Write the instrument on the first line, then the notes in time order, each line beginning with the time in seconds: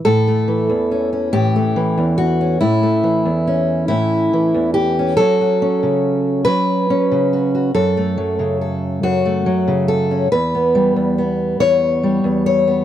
steel-string acoustic guitar
0.05 A2 A4
0.28 A3
0.48 E3
0.70 E2
0.91 C#4
1.13 C#4
1.33 A2 G4
1.56 A3
1.76 E3
1.98 E2
2.18 F#4
2.41 C#4
2.61 A2 E4
2.83 A3
3.03 E3
3.25 E2
3.47 C#4
3.88 A2 E4
4.33 E3
4.54 E2
4.74 G4
4.99 C#4
5.17 F#3 C#4 A4
5.21 F#4
5.41 F#4
5.62 C#4
5.83 C#3
6.45 F#3 B4
6.90 C#4
7.12 C#3
7.33 F#4
7.55 F#4
7.74 F#2 A4
7.97 A3
8.18 F#3
8.39 C#3
8.61 A4
9.03 F#2 F#4
9.25 A3
9.46 F#3
9.68 C#3
9.88 A4
10.11 C#4
10.32 E2 B4
10.55 B3
10.75 G3
10.96 E2
11.18 B3
11.60 E2 C#5
12.03 G3
12.24 E2
12.46 C#5
12.67 B3